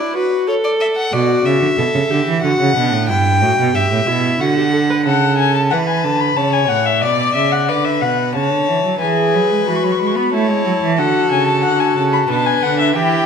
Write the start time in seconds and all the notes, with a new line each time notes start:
Already playing: D5
0.00 E4
0.14 F#4 B4
0.47 A4 C#5
0.64 D5
0.80 E5
0.96 F#5
1.12 B2 F#4 D5
1.45 C#3 E5
1.62 D3
1.77 B2 A4
1.94 C#3
2.10 D3 G4
2.27 E3
2.43 D3 F#4 F#5
2.60 C#3
2.76 B2 D4
2.93 A2
3.09 G2 E4 G5
3.42 A2 F#4
3.58 B2
3.74 G2 G4 E5
3.91 A2
4.07 B2 E4
4.40 D3 F#4 F#5
4.57 G4
4.73 A4
4.90 B4
5.06 C#3 A4 F#5
5.38 G#5
5.55 A5
5.70 E3 B4 F#5
5.88 G#5
6.04 D3 A5
6.20 B5
6.36 C#3 C#5 A5
6.53 G#5
6.69 A2 F#5
6.86 E5
7.02 B2 D5
7.35 C#3 E5
7.52 F#5
7.69 D3 B4 D5
7.85 E5
8.01 B2 F#5
8.35 C#3 C#5 A5
8.52 D3
8.69 E3
8.85 F#3
9.01 E3 G#4 B4 G#5
9.35 F#3
9.51 G#3
9.68 E3 F#4 B5
9.75 C#6
9.84 F#3 B5
9.92 C#6
9.99 G#3 B5
10.07 C#6
10.15 B3 B5
10.33 A3 E4 C#5 A5
10.50 G#3
10.66 F#3
10.83 E3
10.98 D3 F#4 A4 F#5
11.32 C#3 G#5
11.47 A5
11.64 D3 F#5
11.80 G#5
11.97 C#3 A5
12.13 B5
12.29 B2 D4 B4 A5
12.46 G#5
12.62 D3 F#5
12.80 E5
12.95 E3 E4 G4 G5